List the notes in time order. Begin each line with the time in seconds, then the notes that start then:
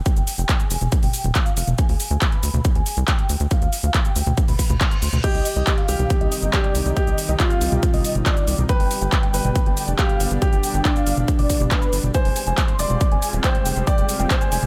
0.06 G5, kick, closed hi-hat, shaker
0.17 F1, closed hi-hat, shaker
0.27 open hi-hat, shaker
0.38 F1 G5, closed hi-hat, shaker
0.49 kick, clap, closed hi-hat, shaker
0.60 G#5, closed hi-hat, shaker
0.70 F1, open hi-hat, shaker
0.81 F1, closed hi-hat, mid tom, shaker
0.92 kick, closed hi-hat, shaker
1.03 F1 G5, open hi-hat, mid tom, shaker
1.14 open hi-hat, shaker
1.24 D#1, closed hi-hat, mid tom, shaker
1.35 F5, kick, clap, closed hi-hat, shaker
1.46 closed hi-hat, shaker
1.57 F1, open hi-hat, shaker
1.67 F1, closed hi-hat, mid tom, shaker
1.78 G#5, kick, closed hi-hat, shaker
1.89 D2, open hi-hat
2.00 open hi-hat, shaker
2.11 D2 G#5, closed hi-hat, shaker
2.21 kick, clap, closed hi-hat, shaker
2.32 B5, closed hi-hat
2.43 D2, open hi-hat, shaker
2.54 D2, closed hi-hat, mid tom, shaker
2.65 kick, closed hi-hat, shaker
2.75 D2 G#5, closed hi-hat
2.86 open hi-hat, shaker
2.97 C2, closed hi-hat, shaker
3.08 G5, kick, clap, closed hi-hat, shaker
3.19 closed hi-hat
3.29 D2, open hi-hat, shaker
3.40 D2, closed hi-hat, shaker
3.51 F5, kick, closed hi-hat, shaker
3.62 D2, closed hi-hat, shaker
3.73 open hi-hat, shaker
3.83 D2 F5, shaker
3.94 kick, clap, closed hi-hat, shaker
4.05 G5, closed hi-hat, shaker
4.16 D2, open hi-hat, shaker
4.27 D2, closed hi-hat, mid tom, shaker
4.37 kick, closed hi-hat, reverse cymbal, shaker
4.48 D2 B5, open hi-hat, mid tom, shaker
4.59 kick, open hi-hat, shaker
4.70 D2, closed hi-hat, mid tom, shaker
4.81 C6, kick, clap, closed hi-hat, shaker
4.91 closed hi-hat, shaker
5.02 D2, open hi-hat, shaker
5.13 D2, closed hi-hat, mid tom, shaker
5.24 C3 D#3 G3 D#4 G4 D#5, kick, closed hi-hat, crash, shaker
5.35 C2, open hi-hat
5.45 open hi-hat, shaker
5.56 C2 D#5, closed hi-hat, shaker
5.67 kick, clap, closed hi-hat, shaker
5.78 F5, closed hi-hat
5.88 C2 G4, open hi-hat, shaker
5.99 C2, closed hi-hat, mid tom, shaker
6.10 kick, closed hi-hat, shaker
6.21 C2 D#5, closed hi-hat
6.32 open hi-hat, shaker
6.43 G1, closed hi-hat, shaker
6.53 G4 D5, kick, clap, closed hi-hat, shaker
6.64 closed hi-hat
6.75 C2, open hi-hat, shaker
6.86 C2, closed hi-hat, shaker
6.96 G4 D#5, kick, closed hi-hat, shaker
7.07 C2, closed hi-hat, shaker
7.18 open hi-hat, shaker
7.29 C2 D#5, closed hi-hat, shaker
7.40 F4, kick, clap, closed hi-hat, shaker
7.50 F5, closed hi-hat, shaker
7.61 C2, open hi-hat, shaker
7.72 C2, closed hi-hat, mid tom, shaker
7.83 kick, closed hi-hat, shaker
7.94 C2 D#5, open hi-hat, mid tom, shaker
8.05 open hi-hat, shaker
8.15 G1, closed hi-hat, mid tom, shaker
8.26 D5, kick, clap, closed hi-hat, shaker
8.37 closed hi-hat, shaker
8.48 C2, open hi-hat, shaker
8.58 C2, closed hi-hat, mid tom, shaker
8.69 B2 D3 D4 B4 G5, kick, closed hi-hat, shaker
8.80 G1, open hi-hat
8.91 open hi-hat, shaker
9.02 G1 G5, closed hi-hat, shaker
9.12 kick, clap, closed hi-hat, shaker
9.23 G5, closed hi-hat
9.34 G1 B4, open hi-hat, shaker
9.45 G1, closed hi-hat, mid tom, shaker
9.56 kick, closed hi-hat, shaker
9.66 G1 G5, closed hi-hat
9.77 open hi-hat, shaker
9.88 F1, closed hi-hat, shaker
9.99 G4 F5, kick, clap, closed hi-hat, shaker
10.09 closed hi-hat
10.20 G1, open hi-hat, shaker
10.31 G1, closed hi-hat, shaker
10.42 G4 G5, kick, closed hi-hat, shaker
10.53 G1, closed hi-hat, shaker
10.63 open hi-hat, shaker
10.74 G1 G5, closed hi-hat, shaker
10.85 D4, kick, clap, closed hi-hat, shaker
10.96 F5, closed hi-hat, shaker
11.06 G1, open hi-hat, shaker
11.17 G1, mid tom, shaker
11.28 kick, closed hi-hat, shaker
11.39 G1 D5, open hi-hat, mid tom, shaker
11.50 kick, open hi-hat, shaker
11.60 F1, closed hi-hat, mid tom, shaker
11.71 B4, kick, clap, closed hi-hat, shaker
11.82 closed hi-hat, shaker
11.93 G1, open hi-hat, shaker
12.04 G1, closed hi-hat, mid tom, shaker
12.14 C3 G3 G#3 F4 C5 G#5, kick, closed hi-hat, shaker
12.25 F1, open hi-hat
12.36 open hi-hat, shaker
12.47 F1 G#5, closed hi-hat, shaker
12.58 kick, clap, closed hi-hat, shaker
12.68 C6, closed hi-hat
12.79 F1 D5, open hi-hat, shaker
12.90 F1, closed hi-hat, mid tom, shaker
13.01 kick, closed hi-hat, shaker
13.12 F1 G#5, closed hi-hat
13.22 open hi-hat, shaker
13.33 D#1, closed hi-hat, shaker
13.44 C5 G5, kick, clap, closed hi-hat, shaker
13.55 closed hi-hat
13.66 F1, open hi-hat, shaker
13.76 F1, closed hi-hat, shaker
13.87 D5 G5, kick, closed hi-hat, shaker
13.98 F1, closed hi-hat, shaker
14.09 open hi-hat, shaker
14.19 F1 G5, closed hi-hat, shaker
14.30 C5, kick, clap, closed hi-hat, shaker
14.41 G#5, closed hi-hat, shaker
14.52 F1, open hi-hat, shaker
14.63 F1, closed hi-hat, mid tom, shaker